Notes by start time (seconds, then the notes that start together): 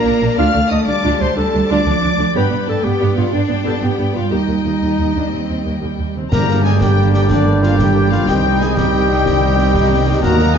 Already playing: A#3 A#4 D5 A#5
0.05 A#1 D4
0.22 A#1 A#3 D4
0.38 D2 A3 D4 F4 F5 A5 F6
0.54 D2 A3 D4
0.71 D2 D4 D#5 D#6
0.87 D2 G3 A3 D4 D5 D6
1.04 D2 D4 F4
1.19 D2 A3 D4 C5 C6
1.36 D2 D4 A4 A5
1.53 D2 A3 D4
1.69 D2 D4 F4 D5 D6
1.86 D2 F3 A3 D4
2.02 D2 D4
2.18 D2 A3 D4
2.34 G2 G3 B3 G4 B4 D5 G5 B5
2.50 G2 B3
2.67 G2 B3 D4 A4 A5
2.84 G2 B3 G4 G5
3.00 G2 B3 G4
3.16 G2 B3 F4 F5
3.32 G2 B3 D4 D5
3.48 G2 B3
3.64 G2 B3 G4 A4 A5
3.81 G2 B3 G4 G5
3.98 G2 B3 D4
4.14 G2 B3 F4 F5
4.31 D#2 G3 A#3 D#4 G4 D#5
4.48 D#2 A#3
4.64 D#2 A#3 D#4
4.81 D#2 D#4
4.99 D#2
5.15 D#2 D4
5.32 D#2 C4
5.49 D#2
5.64 D#2 A#3
5.82 D#2 G3
5.99 D#2
6.15 D#2 C4
6.31 G1 G2 D3 G3 A#3 D4 G4 A#4 D5 A#5 G6, concert bass drum, snare, crash
6.48 G3 A#3 D4 A#4, snare
6.64 G#3 A#3 D4 G4 G#4 G#5, snare
6.81 G3 A#3 D4 G4 A#4 G5, concert bass drum, snare
6.98 A#3 D4 G4
7.14 G3 A#3 D4 G4 A#4 G5, snare
7.29 D3 A#3 D4 G4 D5, concert bass drum, snare
7.46 G3 A#3 D4 A#4
7.63 F3 A#3 D4 F4 G4 F5, snare
7.78 G3 A#3 D4 G4 A#4 G5, concert bass drum, snare
7.96 A#3 D4 G4
8.11 F3 G3 A#3 D4 F4 A#4 F5, snare
8.28 C2 D#3 G3 C4 G4 D#5 G5, concert bass drum, snare
8.45 G3 D#4 C5
8.60 D#3 G#3 C4 G4 G#4 G#5, snare
8.77 G3 D#4 G4 C5 G5, concert bass drum, snare
8.93 D#3 C4 G4
9.09 G3 D#4 C5
9.25 D#3 C4 G4, concert bass drum, snare
9.42 G3 D#4 C5
9.58 D#3 C4 G4, snare
9.73 G3 D#4 C5, concert bass drum, snare
9.90 D#3 C4 G4
10.06 G3 D#4 C5
10.22 D#2 F#3 A#3 F#4 A#4 A#5 F#6, concert bass drum, snare
10.39 D#3 F#3 D#4 A#4, snare
10.55 F#4